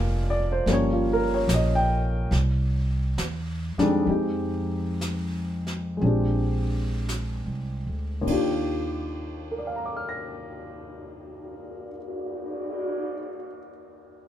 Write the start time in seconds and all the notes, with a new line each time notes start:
Already playing: F1 F3 G3 A#3 F4 A#4 D5 D#5 F5 G5 G#5
0.30 D5
0.52 C5
0.66 G1 F3 G3 A#3 C#4, brush sweep, snare
0.73 C#5
0.93 F4
1.13 A#4
1.34 C#5
1.48 A#1, snare, hi-hat pedal
1.54 D#5
1.75 G5
2.31 C2, brush sweep, snare
3.17 E2, snare, hi-hat pedal
3.77 F2 D#3 G3 G#3 D4, muted upright bass stroke, snare
4.06 F2 G#3 C4 D#4, brush sweep
4.10 G4
5.01 snare, hi-hat pedal
5.67 snare
5.97 G#3 C4, brush sweep
6.01 A#1 D4
6.07 G4
7.09 snare, hi-hat pedal
7.46 C2
7.87 D2
8.22 D#2 D#3
8.27 D#2 D4 F4, kick, ride
8.34 G4
9.12 cymbal swell
9.51 A#4
9.58 D5
9.67 F5
9.76 A#5
9.86 D6
9.97 F6
10.09 A#6